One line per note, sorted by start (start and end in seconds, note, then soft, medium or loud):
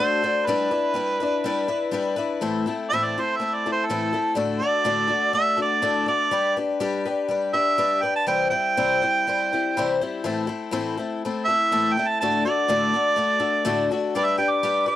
0.00 0.22 A3 medium
0.00 0.22 D4 medium
0.00 0.22 F#4 medium
0.00 0.22 A4 medium
0.00 0.47 C5 medium
0.23 0.47 D4 medium
0.23 0.47 F#4 medium
0.23 0.47 A4 medium
0.46 0.71 G3 medium
0.46 0.71 D4 medium
0.46 0.70 E4 medium
0.46 1.92 B4 medium
0.46 0.70 B4 medium
0.71 0.94 D4 soft
0.71 0.95 E4 medium
0.71 0.95 B4 medium
0.94 1.18 G3 medium
0.94 1.19 D4 medium
0.94 1.20 E4 medium
0.94 1.19 B4 medium
1.20 1.44 D4 medium
1.20 1.44 E4 medium
1.20 1.44 B4 medium
1.44 1.68 G3 medium
1.44 1.68 D4 medium
1.44 1.68 E4 medium
1.44 1.67 B4 medium
1.68 1.91 D4 medium
1.68 1.92 E4 medium
1.68 1.92 B4 medium
1.91 2.16 G3 medium
1.91 2.16 D4 medium
1.91 2.17 E4 medium
1.91 2.15 B4 medium
2.16 2.42 D4 soft
2.16 2.40 E4 medium
2.16 2.41 B4 medium
2.41 2.65 A2 medium
2.41 2.66 E3 medium
2.41 2.65 A3 medium
2.41 2.66 C4 medium
2.41 2.66 E4 medium
2.41 2.65 A4 medium
2.66 2.91 A3 medium
2.66 2.91 C4 medium
2.66 2.91 E4 medium
2.66 2.90 A4 medium
2.89 3.15 A2 medium
2.89 3.16 E3 medium
2.89 3.06 E5 loud
2.93 3.16 A3 medium
2.93 3.16 C4 medium
2.93 3.16 E4 medium
2.93 3.16 A4 medium
3.04 3.22 D5 medium
3.18 3.38 A3 soft
3.18 3.40 C4 soft
3.18 3.40 E4 soft
3.18 3.40 A4 medium
3.18 3.38 C5 medium
3.36 3.64 A3 medium
3.36 3.56 E5 medium
3.41 3.64 C4 soft
3.41 3.64 E4 medium
3.41 3.65 A4 medium
3.54 3.70 D5 medium
3.66 3.88 A3 soft
3.66 3.89 C4 soft
3.66 3.89 E4 soft
3.66 3.89 A4 soft
3.72 3.87 C5 medium
3.86 4.13 A3 medium
3.86 4.34 A4 medium
3.90 4.13 A2 medium
3.90 4.13 E3 medium
3.90 4.13 C4 medium
3.90 4.12 E4 medium
3.90 4.12 A4 medium
4.13 4.35 A3 soft
4.13 4.36 C4 medium
4.13 4.36 E4 soft
4.13 4.36 A4 medium
4.35 4.60 A2 medium
4.35 4.60 D3 medium
4.35 4.61 A3 medium
4.35 4.61 D4 medium
4.35 4.61 F#4 medium
4.35 4.61 A4 medium
4.59 4.84 F#4 medium
4.59 4.85 A4 medium
4.59 5.31 D5 loud
4.63 4.83 A3 soft
4.63 4.85 D4 soft
4.84 5.09 A2 medium
4.84 5.10 D3 medium
4.84 5.08 A3 medium
4.84 5.08 D4 medium
4.84 5.07 F#4 medium
4.84 5.06 A4 medium
5.07 5.32 A3 soft
5.07 5.32 D4 soft
5.07 5.33 F#4 soft
5.07 5.33 A4 medium
5.33 5.58 A3 medium
5.33 5.57 D4 medium
5.33 5.56 F#4 medium
5.33 5.56 A4 medium
5.33 5.58 E5 loud
5.57 5.81 A3 soft
5.57 5.81 D4 medium
5.57 5.82 F#4 medium
5.57 5.82 A4 soft
5.62 6.07 D5 medium
5.82 6.07 A2 medium
5.82 6.07 D3 medium
5.82 6.08 A3 medium
5.82 6.07 D4 medium
5.82 6.07 F#4 medium
5.82 6.05 A4 medium
6.06 6.31 A3 soft
6.06 6.30 D4 medium
6.06 6.32 F#4 soft
6.06 6.31 A4 medium
6.06 6.55 D5 loud
6.31 6.56 G3 medium
6.31 6.56 D4 medium
6.31 6.57 G4 medium
6.31 6.55 B4 medium
6.57 6.79 D4 soft
6.57 6.80 G4 soft
6.57 6.80 B4 medium
6.80 7.05 G3 medium
6.80 7.05 D4 medium
6.80 7.05 G4 loud
6.80 7.04 B4 medium
7.05 7.29 D4 soft
7.05 7.30 G4 medium
7.05 7.30 B4 medium
7.28 7.54 G3 medium
7.28 7.53 D4 medium
7.28 7.52 G4 medium
7.28 7.52 B4 medium
7.53 7.77 D4 soft
7.53 7.77 G4 soft
7.53 7.78 B4 soft
7.53 8.03 E5 loud
7.78 8.03 G3 medium
7.78 8.03 D4 medium
7.78 8.02 G4 medium
7.78 8.01 B4 medium
8.02 8.27 D4 soft
8.02 8.28 G4 soft
8.02 8.28 B4 medium
8.02 8.14 G5 medium
8.16 8.27 A5 medium
8.26 8.52 C3 medium
8.26 8.52 E3 medium
8.26 8.51 G3 medium
8.26 8.50 C4 medium
8.26 8.50 E4 medium
8.26 8.49 C5 medium
8.26 8.49 G5 medium
8.50 8.76 G3 soft
8.50 8.76 C4 soft
8.50 8.76 E4 medium
8.50 8.76 C5 medium
8.50 9.94 G5 loud
8.77 9.02 C3 medium
8.77 9.02 E3 medium
8.77 9.02 G3 medium
8.77 9.02 C4 medium
8.77 9.01 E4 medium
8.77 9.00 C5 medium
9.02 9.26 G3 soft
9.02 9.27 C4 soft
9.02 9.26 E4 soft
9.02 9.26 C5 medium
9.27 9.51 G3 medium
9.27 9.52 C4 medium
9.27 9.51 E4 medium
9.27 9.51 C5 medium
9.53 9.77 G3 soft
9.53 9.77 C4 soft
9.53 9.76 E4 medium
9.53 9.76 C5 medium
9.77 10.00 C3 medium
9.77 10.00 E3 medium
9.77 10.01 G3 medium
9.77 10.01 C4 medium
9.77 10.01 E4 medium
9.77 10.00 C5 loud
10.01 10.24 G3 medium
10.01 10.24 C4 medium
10.01 10.25 E4 medium
10.01 10.25 C5 medium
10.24 10.48 A2 medium
10.24 10.48 E3 medium
10.24 10.48 A3 medium
10.24 10.47 C4 medium
10.24 10.46 E4 medium
10.24 10.46 A4 medium
10.47 10.71 A3 medium
10.47 10.72 C4 medium
10.47 10.71 E4 medium
10.47 10.72 A4 medium
10.71 10.96 A2 medium
10.71 10.97 E3 medium
10.71 10.97 A3 medium
10.71 10.97 C4 medium
10.71 10.97 E4 loud
10.71 10.96 A4 medium
10.97 11.23 A3 soft
10.97 11.23 C4 soft
10.97 11.22 E4 medium
10.97 11.22 A4 medium
11.25 11.47 A3 medium
11.25 11.48 C4 medium
11.25 11.48 E4 medium
11.25 11.47 A4 medium
11.45 11.71 A4 soft
11.45 11.95 E5 loud
11.49 11.71 A3 soft
11.49 11.71 C4 soft
11.49 11.71 E4 soft
11.72 11.95 A2 medium
11.72 11.95 E3 medium
11.72 11.96 A3 medium
11.72 11.96 C4 medium
11.72 11.96 E4 medium
11.72 11.96 A4 medium
11.93 12.20 A4 medium
11.93 12.09 G5 medium
11.99 12.21 A3 soft
11.99 12.21 C4 soft
11.99 12.21 E4 medium
12.08 12.19 A5 medium
12.20 12.44 A2 medium
12.20 12.45 D3 medium
12.20 12.45 A3 medium
12.20 12.45 D4 medium
12.20 12.45 F#4 medium
12.20 12.44 A4 medium
12.20 12.43 A5 medium
12.45 12.68 A3 soft
12.45 12.68 D4 soft
12.45 12.69 F#4 soft
12.45 12.68 A4 medium
12.45 13.86 D5 loud
12.68 12.92 A2 medium
12.68 12.93 D3 medium
12.68 12.93 A3 medium
12.68 12.93 D4 medium
12.68 12.93 F#4 medium
12.68 12.92 A4 medium
12.94 13.15 A3 soft
12.94 13.16 D4 medium
12.94 13.16 F#4 medium
12.94 13.17 A4 soft
13.16 13.39 A3 medium
13.16 13.39 D4 medium
13.16 13.38 F#4 medium
13.16 13.38 A4 medium
13.40 13.64 A3 soft
13.40 13.64 D4 soft
13.40 13.64 F#4 medium
13.40 13.64 A4 medium
13.65 13.89 A2 loud
13.65 13.89 D3 medium
13.65 13.89 A3 loud
13.65 13.89 D4 medium
13.65 13.90 F#4 medium
13.65 13.90 A4 loud
13.91 14.15 A3 medium
13.91 14.14 D4 medium
13.91 14.15 F#4 medium
13.91 14.14 A4 medium
14.15 14.39 G3 medium
14.15 14.38 D4 medium
14.15 14.37 G4 medium
14.15 14.36 B4 medium
14.15 14.26 D5 loud
14.24 14.36 E5 medium
14.38 14.62 D4 medium
14.38 14.62 G4 medium
14.38 14.62 B4 medium
14.38 14.52 G5 medium
14.50 14.85 D6 loud
14.63 14.87 G3 medium
14.63 14.87 D4 medium
14.63 14.86 G4 medium
14.63 14.85 B4 medium
14.86 14.96 D4 soft
14.86 14.96 G4 medium
14.86 14.96 B4 medium
14.86 14.96 D6 loud